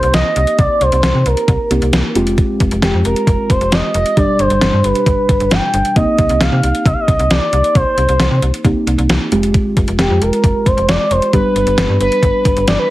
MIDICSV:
0, 0, Header, 1, 5, 480
1, 0, Start_track
1, 0, Key_signature, -3, "minor"
1, 0, Tempo, 447761
1, 630, Time_signature, 4, 2, 24, 8
1, 13831, End_track
2, 0, Start_track
2, 0, Title_t, "Analog synth lead"
2, 0, Program_c, 0, 81
2, 0, Note_on_c, 0, 72, 101
2, 145, Note_off_c, 0, 72, 0
2, 152, Note_on_c, 0, 75, 105
2, 374, Note_off_c, 0, 75, 0
2, 391, Note_on_c, 0, 75, 101
2, 633, Note_on_c, 0, 74, 109
2, 649, Note_off_c, 0, 75, 0
2, 875, Note_on_c, 0, 72, 103
2, 891, Note_off_c, 0, 74, 0
2, 1355, Note_on_c, 0, 70, 93
2, 1371, Note_off_c, 0, 72, 0
2, 2312, Note_off_c, 0, 70, 0
2, 3031, Note_on_c, 0, 67, 80
2, 3139, Note_off_c, 0, 67, 0
2, 3271, Note_on_c, 0, 70, 90
2, 3754, Note_on_c, 0, 72, 89
2, 3770, Note_off_c, 0, 70, 0
2, 3996, Note_on_c, 0, 75, 94
2, 4012, Note_off_c, 0, 72, 0
2, 4230, Note_off_c, 0, 75, 0
2, 4236, Note_on_c, 0, 75, 94
2, 4478, Note_on_c, 0, 74, 106
2, 4494, Note_off_c, 0, 75, 0
2, 4715, Note_on_c, 0, 72, 101
2, 4731, Note_off_c, 0, 74, 0
2, 5194, Note_on_c, 0, 71, 102
2, 5210, Note_off_c, 0, 72, 0
2, 5914, Note_on_c, 0, 79, 107
2, 5930, Note_off_c, 0, 71, 0
2, 6389, Note_off_c, 0, 79, 0
2, 6396, Note_on_c, 0, 75, 114
2, 6877, Note_on_c, 0, 77, 100
2, 6893, Note_off_c, 0, 75, 0
2, 7354, Note_on_c, 0, 75, 94
2, 7370, Note_off_c, 0, 77, 0
2, 7429, Note_on_c, 0, 77, 82
2, 7445, Note_off_c, 0, 75, 0
2, 7505, Note_on_c, 0, 75, 97
2, 7521, Note_off_c, 0, 77, 0
2, 7834, Note_on_c, 0, 74, 93
2, 7850, Note_off_c, 0, 75, 0
2, 8314, Note_on_c, 0, 72, 93
2, 8330, Note_off_c, 0, 74, 0
2, 9032, Note_off_c, 0, 72, 0
2, 10711, Note_on_c, 0, 67, 89
2, 10951, Note_on_c, 0, 70, 102
2, 10967, Note_off_c, 0, 67, 0
2, 11430, Note_on_c, 0, 72, 103
2, 11446, Note_off_c, 0, 70, 0
2, 11670, Note_on_c, 0, 74, 106
2, 11686, Note_off_c, 0, 72, 0
2, 11911, Note_on_c, 0, 72, 103
2, 11927, Note_off_c, 0, 74, 0
2, 12145, Note_off_c, 0, 72, 0
2, 12151, Note_on_c, 0, 71, 110
2, 12374, Note_off_c, 0, 71, 0
2, 12394, Note_on_c, 0, 71, 103
2, 12838, Note_off_c, 0, 71, 0
2, 12875, Note_on_c, 0, 71, 91
2, 13549, Note_off_c, 0, 71, 0
2, 13594, Note_on_c, 0, 74, 92
2, 13703, Note_off_c, 0, 74, 0
2, 13714, Note_on_c, 0, 71, 90
2, 13831, Note_off_c, 0, 71, 0
2, 13831, End_track
3, 0, Start_track
3, 0, Title_t, "Synth keys"
3, 0, Program_c, 1, 88
3, 0, Note_on_c, 1, 58, 75
3, 0, Note_on_c, 1, 60, 69
3, 0, Note_on_c, 1, 63, 69
3, 0, Note_on_c, 1, 67, 85
3, 1786, Note_off_c, 1, 58, 0
3, 1786, Note_off_c, 1, 63, 0
3, 1786, Note_off_c, 1, 67, 0
3, 1787, Note_off_c, 1, 60, 0
3, 1829, Note_on_c, 1, 58, 48
3, 1829, Note_on_c, 1, 67, 53
3, 1830, Note_on_c, 1, 60, 45
3, 1830, Note_on_c, 1, 63, 45
3, 2298, Note_off_c, 1, 60, 0
3, 2298, Note_off_c, 1, 67, 0
3, 2310, Note_off_c, 1, 58, 0
3, 2310, Note_off_c, 1, 63, 0
3, 2310, Note_on_c, 1, 60, 72
3, 2310, Note_on_c, 1, 65, 74
3, 2311, Note_on_c, 1, 56, 79
3, 2311, Note_on_c, 1, 67, 86
3, 4427, Note_off_c, 1, 60, 0
3, 4427, Note_off_c, 1, 65, 0
3, 4427, Note_off_c, 1, 67, 0
3, 4428, Note_off_c, 1, 56, 0
3, 4470, Note_on_c, 1, 47, 60
3, 4470, Note_on_c, 1, 55, 64
3, 4470, Note_on_c, 1, 62, 59
3, 4470, Note_on_c, 1, 67, 72
3, 6351, Note_off_c, 1, 47, 0
3, 6351, Note_off_c, 1, 67, 0
3, 6352, Note_off_c, 1, 55, 0
3, 6352, Note_off_c, 1, 62, 0
3, 6391, Note_on_c, 1, 58, 64
3, 6391, Note_on_c, 1, 60, 59
3, 6391, Note_on_c, 1, 63, 58
3, 6392, Note_on_c, 1, 67, 71
3, 9227, Note_off_c, 1, 60, 0
3, 9227, Note_off_c, 1, 63, 0
3, 9228, Note_off_c, 1, 58, 0
3, 9228, Note_off_c, 1, 67, 0
3, 9269, Note_on_c, 1, 58, 57
3, 9269, Note_on_c, 1, 60, 53
3, 9269, Note_on_c, 1, 63, 53
3, 9269, Note_on_c, 1, 67, 62
3, 9979, Note_off_c, 1, 60, 0
3, 9979, Note_off_c, 1, 67, 0
3, 9990, Note_off_c, 1, 58, 0
3, 9990, Note_off_c, 1, 63, 0
3, 9992, Note_on_c, 1, 56, 79
3, 9992, Note_on_c, 1, 60, 71
3, 9992, Note_on_c, 1, 65, 73
3, 9992, Note_on_c, 1, 67, 84
3, 12108, Note_off_c, 1, 56, 0
3, 12108, Note_off_c, 1, 60, 0
3, 12108, Note_off_c, 1, 65, 0
3, 12108, Note_off_c, 1, 67, 0
3, 12149, Note_on_c, 1, 55, 63
3, 12149, Note_on_c, 1, 62, 59
3, 12149, Note_on_c, 1, 67, 72
3, 12150, Note_on_c, 1, 59, 60
3, 13831, Note_off_c, 1, 55, 0
3, 13831, Note_off_c, 1, 59, 0
3, 13831, Note_off_c, 1, 62, 0
3, 13831, Note_off_c, 1, 67, 0
3, 13831, End_track
4, 0, Start_track
4, 0, Title_t, "FM bass"
4, 0, Program_c, 2, 39
4, 31, Note_on_c, 2, 36, 95
4, 132, Note_off_c, 2, 36, 0
4, 150, Note_on_c, 2, 36, 98
4, 252, Note_off_c, 2, 36, 0
4, 390, Note_on_c, 2, 36, 101
4, 492, Note_off_c, 2, 36, 0
4, 630, Note_on_c, 2, 36, 101
4, 731, Note_off_c, 2, 36, 0
4, 869, Note_on_c, 2, 36, 97
4, 971, Note_off_c, 2, 36, 0
4, 989, Note_on_c, 2, 36, 94
4, 1091, Note_off_c, 2, 36, 0
4, 1108, Note_on_c, 2, 36, 94
4, 1211, Note_off_c, 2, 36, 0
4, 1230, Note_on_c, 2, 48, 90
4, 1331, Note_off_c, 2, 48, 0
4, 1349, Note_on_c, 2, 36, 95
4, 1451, Note_off_c, 2, 36, 0
4, 1587, Note_on_c, 2, 36, 104
4, 1690, Note_off_c, 2, 36, 0
4, 1829, Note_on_c, 2, 36, 98
4, 1931, Note_off_c, 2, 36, 0
4, 1949, Note_on_c, 2, 36, 96
4, 2051, Note_off_c, 2, 36, 0
4, 2069, Note_on_c, 2, 36, 101
4, 2171, Note_off_c, 2, 36, 0
4, 2309, Note_on_c, 2, 29, 90
4, 2615, Note_off_c, 2, 29, 0
4, 2791, Note_on_c, 2, 29, 101
4, 2892, Note_off_c, 2, 29, 0
4, 2911, Note_on_c, 2, 29, 97
4, 3012, Note_off_c, 2, 29, 0
4, 3029, Note_on_c, 2, 29, 101
4, 3131, Note_off_c, 2, 29, 0
4, 3149, Note_on_c, 2, 41, 97
4, 3251, Note_off_c, 2, 41, 0
4, 3269, Note_on_c, 2, 29, 96
4, 3371, Note_off_c, 2, 29, 0
4, 3507, Note_on_c, 2, 29, 105
4, 3610, Note_off_c, 2, 29, 0
4, 3750, Note_on_c, 2, 29, 99
4, 3852, Note_off_c, 2, 29, 0
4, 3870, Note_on_c, 2, 29, 95
4, 3972, Note_off_c, 2, 29, 0
4, 3990, Note_on_c, 2, 29, 97
4, 4092, Note_off_c, 2, 29, 0
4, 4230, Note_on_c, 2, 29, 100
4, 4331, Note_off_c, 2, 29, 0
4, 4470, Note_on_c, 2, 31, 104
4, 4572, Note_off_c, 2, 31, 0
4, 4710, Note_on_c, 2, 31, 97
4, 4812, Note_off_c, 2, 31, 0
4, 4832, Note_on_c, 2, 31, 90
4, 4933, Note_off_c, 2, 31, 0
4, 4953, Note_on_c, 2, 31, 96
4, 5053, Note_off_c, 2, 31, 0
4, 5072, Note_on_c, 2, 43, 99
4, 5173, Note_off_c, 2, 43, 0
4, 5191, Note_on_c, 2, 31, 92
4, 5292, Note_off_c, 2, 31, 0
4, 5428, Note_on_c, 2, 31, 106
4, 5530, Note_off_c, 2, 31, 0
4, 5670, Note_on_c, 2, 31, 95
4, 5772, Note_off_c, 2, 31, 0
4, 5791, Note_on_c, 2, 31, 91
4, 5892, Note_off_c, 2, 31, 0
4, 5910, Note_on_c, 2, 31, 98
4, 6012, Note_off_c, 2, 31, 0
4, 6151, Note_on_c, 2, 31, 96
4, 6252, Note_off_c, 2, 31, 0
4, 6391, Note_on_c, 2, 36, 106
4, 6492, Note_off_c, 2, 36, 0
4, 6631, Note_on_c, 2, 36, 96
4, 6732, Note_off_c, 2, 36, 0
4, 6752, Note_on_c, 2, 36, 100
4, 6853, Note_off_c, 2, 36, 0
4, 6870, Note_on_c, 2, 36, 102
4, 6972, Note_off_c, 2, 36, 0
4, 6992, Note_on_c, 2, 48, 98
4, 7093, Note_off_c, 2, 48, 0
4, 7112, Note_on_c, 2, 36, 87
4, 7213, Note_off_c, 2, 36, 0
4, 7350, Note_on_c, 2, 36, 111
4, 7451, Note_off_c, 2, 36, 0
4, 7592, Note_on_c, 2, 36, 90
4, 7693, Note_off_c, 2, 36, 0
4, 7712, Note_on_c, 2, 36, 99
4, 7813, Note_off_c, 2, 36, 0
4, 7831, Note_on_c, 2, 36, 97
4, 7932, Note_off_c, 2, 36, 0
4, 8070, Note_on_c, 2, 36, 104
4, 8172, Note_off_c, 2, 36, 0
4, 8311, Note_on_c, 2, 36, 101
4, 8412, Note_off_c, 2, 36, 0
4, 8549, Note_on_c, 2, 36, 94
4, 8651, Note_off_c, 2, 36, 0
4, 8669, Note_on_c, 2, 36, 97
4, 8771, Note_off_c, 2, 36, 0
4, 8789, Note_on_c, 2, 36, 98
4, 8891, Note_off_c, 2, 36, 0
4, 8909, Note_on_c, 2, 48, 92
4, 9011, Note_off_c, 2, 48, 0
4, 9029, Note_on_c, 2, 36, 95
4, 9131, Note_off_c, 2, 36, 0
4, 9269, Note_on_c, 2, 36, 102
4, 9371, Note_off_c, 2, 36, 0
4, 9508, Note_on_c, 2, 36, 98
4, 9611, Note_off_c, 2, 36, 0
4, 9628, Note_on_c, 2, 36, 100
4, 9731, Note_off_c, 2, 36, 0
4, 9749, Note_on_c, 2, 36, 104
4, 9851, Note_off_c, 2, 36, 0
4, 9989, Note_on_c, 2, 29, 96
4, 10295, Note_off_c, 2, 29, 0
4, 10471, Note_on_c, 2, 29, 101
4, 10572, Note_off_c, 2, 29, 0
4, 10590, Note_on_c, 2, 29, 96
4, 10692, Note_off_c, 2, 29, 0
4, 10709, Note_on_c, 2, 29, 97
4, 10811, Note_off_c, 2, 29, 0
4, 10829, Note_on_c, 2, 41, 101
4, 10931, Note_off_c, 2, 41, 0
4, 10949, Note_on_c, 2, 29, 98
4, 11051, Note_off_c, 2, 29, 0
4, 11189, Note_on_c, 2, 29, 105
4, 11291, Note_off_c, 2, 29, 0
4, 11431, Note_on_c, 2, 29, 98
4, 11532, Note_off_c, 2, 29, 0
4, 11548, Note_on_c, 2, 29, 100
4, 11651, Note_off_c, 2, 29, 0
4, 11668, Note_on_c, 2, 29, 101
4, 11770, Note_off_c, 2, 29, 0
4, 11909, Note_on_c, 2, 29, 105
4, 12011, Note_off_c, 2, 29, 0
4, 12150, Note_on_c, 2, 31, 107
4, 12252, Note_off_c, 2, 31, 0
4, 12388, Note_on_c, 2, 31, 92
4, 12490, Note_off_c, 2, 31, 0
4, 12507, Note_on_c, 2, 31, 94
4, 12610, Note_off_c, 2, 31, 0
4, 12628, Note_on_c, 2, 31, 98
4, 12731, Note_off_c, 2, 31, 0
4, 12749, Note_on_c, 2, 43, 97
4, 12851, Note_off_c, 2, 43, 0
4, 12869, Note_on_c, 2, 31, 96
4, 12971, Note_off_c, 2, 31, 0
4, 13107, Note_on_c, 2, 31, 103
4, 13210, Note_off_c, 2, 31, 0
4, 13350, Note_on_c, 2, 31, 92
4, 13451, Note_off_c, 2, 31, 0
4, 13470, Note_on_c, 2, 31, 93
4, 13572, Note_off_c, 2, 31, 0
4, 13590, Note_on_c, 2, 31, 105
4, 13691, Note_off_c, 2, 31, 0
4, 13831, End_track
5, 0, Start_track
5, 0, Title_t, "Drums"
5, 30, Note_on_c, 9, 42, 46
5, 137, Note_off_c, 9, 42, 0
5, 146, Note_on_c, 9, 42, 78
5, 149, Note_on_c, 9, 38, 116
5, 254, Note_off_c, 9, 42, 0
5, 256, Note_off_c, 9, 38, 0
5, 387, Note_on_c, 9, 42, 78
5, 494, Note_off_c, 9, 42, 0
5, 506, Note_on_c, 9, 42, 54
5, 614, Note_off_c, 9, 42, 0
5, 628, Note_on_c, 9, 42, 64
5, 629, Note_on_c, 9, 36, 109
5, 735, Note_off_c, 9, 42, 0
5, 737, Note_off_c, 9, 36, 0
5, 869, Note_on_c, 9, 42, 62
5, 976, Note_off_c, 9, 42, 0
5, 988, Note_on_c, 9, 42, 53
5, 1095, Note_off_c, 9, 42, 0
5, 1106, Note_on_c, 9, 38, 111
5, 1110, Note_on_c, 9, 42, 78
5, 1213, Note_off_c, 9, 38, 0
5, 1217, Note_off_c, 9, 42, 0
5, 1349, Note_on_c, 9, 42, 67
5, 1456, Note_off_c, 9, 42, 0
5, 1470, Note_on_c, 9, 42, 50
5, 1577, Note_off_c, 9, 42, 0
5, 1587, Note_on_c, 9, 36, 92
5, 1589, Note_on_c, 9, 42, 69
5, 1694, Note_off_c, 9, 36, 0
5, 1696, Note_off_c, 9, 42, 0
5, 1831, Note_on_c, 9, 42, 74
5, 1938, Note_off_c, 9, 42, 0
5, 1951, Note_on_c, 9, 42, 44
5, 2058, Note_off_c, 9, 42, 0
5, 2069, Note_on_c, 9, 42, 78
5, 2072, Note_on_c, 9, 38, 118
5, 2177, Note_off_c, 9, 42, 0
5, 2179, Note_off_c, 9, 38, 0
5, 2310, Note_on_c, 9, 42, 79
5, 2417, Note_off_c, 9, 42, 0
5, 2431, Note_on_c, 9, 42, 54
5, 2538, Note_off_c, 9, 42, 0
5, 2550, Note_on_c, 9, 36, 106
5, 2550, Note_on_c, 9, 42, 65
5, 2657, Note_off_c, 9, 36, 0
5, 2657, Note_off_c, 9, 42, 0
5, 2790, Note_on_c, 9, 42, 66
5, 2791, Note_on_c, 9, 36, 81
5, 2897, Note_off_c, 9, 42, 0
5, 2898, Note_off_c, 9, 36, 0
5, 2908, Note_on_c, 9, 42, 53
5, 3015, Note_off_c, 9, 42, 0
5, 3027, Note_on_c, 9, 38, 109
5, 3031, Note_on_c, 9, 42, 76
5, 3134, Note_off_c, 9, 38, 0
5, 3138, Note_off_c, 9, 42, 0
5, 3270, Note_on_c, 9, 42, 65
5, 3377, Note_off_c, 9, 42, 0
5, 3391, Note_on_c, 9, 42, 52
5, 3498, Note_off_c, 9, 42, 0
5, 3507, Note_on_c, 9, 36, 95
5, 3510, Note_on_c, 9, 42, 69
5, 3615, Note_off_c, 9, 36, 0
5, 3617, Note_off_c, 9, 42, 0
5, 3750, Note_on_c, 9, 36, 93
5, 3752, Note_on_c, 9, 42, 76
5, 3857, Note_off_c, 9, 36, 0
5, 3860, Note_off_c, 9, 42, 0
5, 3871, Note_on_c, 9, 42, 45
5, 3978, Note_off_c, 9, 42, 0
5, 3988, Note_on_c, 9, 42, 79
5, 3991, Note_on_c, 9, 38, 118
5, 4096, Note_off_c, 9, 42, 0
5, 4098, Note_off_c, 9, 38, 0
5, 4228, Note_on_c, 9, 42, 78
5, 4335, Note_off_c, 9, 42, 0
5, 4349, Note_on_c, 9, 42, 54
5, 4456, Note_off_c, 9, 42, 0
5, 4470, Note_on_c, 9, 36, 104
5, 4470, Note_on_c, 9, 42, 64
5, 4577, Note_off_c, 9, 36, 0
5, 4577, Note_off_c, 9, 42, 0
5, 4708, Note_on_c, 9, 42, 64
5, 4815, Note_off_c, 9, 42, 0
5, 4827, Note_on_c, 9, 42, 52
5, 4934, Note_off_c, 9, 42, 0
5, 4946, Note_on_c, 9, 38, 111
5, 4951, Note_on_c, 9, 42, 77
5, 5053, Note_off_c, 9, 38, 0
5, 5058, Note_off_c, 9, 42, 0
5, 5190, Note_on_c, 9, 42, 68
5, 5297, Note_off_c, 9, 42, 0
5, 5310, Note_on_c, 9, 42, 50
5, 5418, Note_off_c, 9, 42, 0
5, 5428, Note_on_c, 9, 36, 92
5, 5430, Note_on_c, 9, 42, 68
5, 5535, Note_off_c, 9, 36, 0
5, 5537, Note_off_c, 9, 42, 0
5, 5670, Note_on_c, 9, 36, 94
5, 5672, Note_on_c, 9, 42, 76
5, 5778, Note_off_c, 9, 36, 0
5, 5779, Note_off_c, 9, 42, 0
5, 5792, Note_on_c, 9, 42, 46
5, 5899, Note_off_c, 9, 42, 0
5, 5908, Note_on_c, 9, 42, 79
5, 5911, Note_on_c, 9, 38, 115
5, 6015, Note_off_c, 9, 42, 0
5, 6018, Note_off_c, 9, 38, 0
5, 6149, Note_on_c, 9, 42, 77
5, 6257, Note_off_c, 9, 42, 0
5, 6270, Note_on_c, 9, 42, 53
5, 6377, Note_off_c, 9, 42, 0
5, 6390, Note_on_c, 9, 42, 65
5, 6391, Note_on_c, 9, 36, 106
5, 6497, Note_off_c, 9, 42, 0
5, 6498, Note_off_c, 9, 36, 0
5, 6630, Note_on_c, 9, 42, 67
5, 6631, Note_on_c, 9, 36, 87
5, 6737, Note_off_c, 9, 42, 0
5, 6738, Note_off_c, 9, 36, 0
5, 6747, Note_on_c, 9, 42, 53
5, 6854, Note_off_c, 9, 42, 0
5, 6867, Note_on_c, 9, 38, 111
5, 6872, Note_on_c, 9, 42, 79
5, 6975, Note_off_c, 9, 38, 0
5, 6979, Note_off_c, 9, 42, 0
5, 7113, Note_on_c, 9, 42, 68
5, 7220, Note_off_c, 9, 42, 0
5, 7233, Note_on_c, 9, 42, 54
5, 7341, Note_off_c, 9, 42, 0
5, 7350, Note_on_c, 9, 36, 97
5, 7355, Note_on_c, 9, 42, 69
5, 7457, Note_off_c, 9, 36, 0
5, 7462, Note_off_c, 9, 42, 0
5, 7592, Note_on_c, 9, 36, 94
5, 7594, Note_on_c, 9, 42, 74
5, 7699, Note_off_c, 9, 36, 0
5, 7701, Note_off_c, 9, 42, 0
5, 7713, Note_on_c, 9, 42, 47
5, 7821, Note_off_c, 9, 42, 0
5, 7832, Note_on_c, 9, 42, 77
5, 7835, Note_on_c, 9, 38, 117
5, 7939, Note_off_c, 9, 42, 0
5, 7942, Note_off_c, 9, 38, 0
5, 8071, Note_on_c, 9, 42, 78
5, 8178, Note_off_c, 9, 42, 0
5, 8192, Note_on_c, 9, 42, 53
5, 8300, Note_off_c, 9, 42, 0
5, 8311, Note_on_c, 9, 36, 106
5, 8311, Note_on_c, 9, 42, 65
5, 8419, Note_off_c, 9, 36, 0
5, 8419, Note_off_c, 9, 42, 0
5, 8552, Note_on_c, 9, 42, 63
5, 8659, Note_off_c, 9, 42, 0
5, 8669, Note_on_c, 9, 42, 53
5, 8776, Note_off_c, 9, 42, 0
5, 8787, Note_on_c, 9, 38, 110
5, 8791, Note_on_c, 9, 42, 76
5, 8894, Note_off_c, 9, 38, 0
5, 8898, Note_off_c, 9, 42, 0
5, 9032, Note_on_c, 9, 42, 68
5, 9139, Note_off_c, 9, 42, 0
5, 9154, Note_on_c, 9, 42, 52
5, 9261, Note_off_c, 9, 42, 0
5, 9269, Note_on_c, 9, 36, 91
5, 9272, Note_on_c, 9, 42, 70
5, 9376, Note_off_c, 9, 36, 0
5, 9380, Note_off_c, 9, 42, 0
5, 9513, Note_on_c, 9, 42, 73
5, 9620, Note_off_c, 9, 42, 0
5, 9633, Note_on_c, 9, 42, 47
5, 9740, Note_off_c, 9, 42, 0
5, 9750, Note_on_c, 9, 42, 77
5, 9753, Note_on_c, 9, 38, 117
5, 9857, Note_off_c, 9, 42, 0
5, 9860, Note_off_c, 9, 38, 0
5, 9990, Note_on_c, 9, 42, 77
5, 10097, Note_off_c, 9, 42, 0
5, 10111, Note_on_c, 9, 42, 55
5, 10218, Note_off_c, 9, 42, 0
5, 10231, Note_on_c, 9, 36, 109
5, 10231, Note_on_c, 9, 42, 64
5, 10338, Note_off_c, 9, 36, 0
5, 10338, Note_off_c, 9, 42, 0
5, 10471, Note_on_c, 9, 36, 88
5, 10471, Note_on_c, 9, 42, 68
5, 10578, Note_off_c, 9, 36, 0
5, 10578, Note_off_c, 9, 42, 0
5, 10589, Note_on_c, 9, 42, 53
5, 10696, Note_off_c, 9, 42, 0
5, 10706, Note_on_c, 9, 38, 109
5, 10711, Note_on_c, 9, 42, 80
5, 10813, Note_off_c, 9, 38, 0
5, 10818, Note_off_c, 9, 42, 0
5, 10952, Note_on_c, 9, 42, 67
5, 11059, Note_off_c, 9, 42, 0
5, 11074, Note_on_c, 9, 42, 51
5, 11181, Note_off_c, 9, 42, 0
5, 11188, Note_on_c, 9, 36, 92
5, 11192, Note_on_c, 9, 42, 72
5, 11296, Note_off_c, 9, 36, 0
5, 11300, Note_off_c, 9, 42, 0
5, 11430, Note_on_c, 9, 36, 97
5, 11433, Note_on_c, 9, 42, 76
5, 11537, Note_off_c, 9, 36, 0
5, 11540, Note_off_c, 9, 42, 0
5, 11554, Note_on_c, 9, 42, 48
5, 11661, Note_off_c, 9, 42, 0
5, 11671, Note_on_c, 9, 42, 81
5, 11673, Note_on_c, 9, 38, 112
5, 11778, Note_off_c, 9, 42, 0
5, 11780, Note_off_c, 9, 38, 0
5, 11910, Note_on_c, 9, 42, 78
5, 12017, Note_off_c, 9, 42, 0
5, 12031, Note_on_c, 9, 42, 53
5, 12138, Note_off_c, 9, 42, 0
5, 12150, Note_on_c, 9, 36, 106
5, 12150, Note_on_c, 9, 42, 65
5, 12257, Note_off_c, 9, 36, 0
5, 12257, Note_off_c, 9, 42, 0
5, 12392, Note_on_c, 9, 42, 64
5, 12499, Note_off_c, 9, 42, 0
5, 12508, Note_on_c, 9, 42, 52
5, 12616, Note_off_c, 9, 42, 0
5, 12626, Note_on_c, 9, 38, 111
5, 12631, Note_on_c, 9, 42, 79
5, 12733, Note_off_c, 9, 38, 0
5, 12738, Note_off_c, 9, 42, 0
5, 12870, Note_on_c, 9, 42, 67
5, 12978, Note_off_c, 9, 42, 0
5, 12992, Note_on_c, 9, 42, 54
5, 13099, Note_off_c, 9, 42, 0
5, 13107, Note_on_c, 9, 36, 96
5, 13110, Note_on_c, 9, 42, 73
5, 13214, Note_off_c, 9, 36, 0
5, 13217, Note_off_c, 9, 42, 0
5, 13349, Note_on_c, 9, 36, 97
5, 13351, Note_on_c, 9, 42, 73
5, 13456, Note_off_c, 9, 36, 0
5, 13458, Note_off_c, 9, 42, 0
5, 13471, Note_on_c, 9, 42, 46
5, 13578, Note_off_c, 9, 42, 0
5, 13588, Note_on_c, 9, 42, 79
5, 13591, Note_on_c, 9, 38, 113
5, 13695, Note_off_c, 9, 42, 0
5, 13698, Note_off_c, 9, 38, 0
5, 13831, End_track
0, 0, End_of_file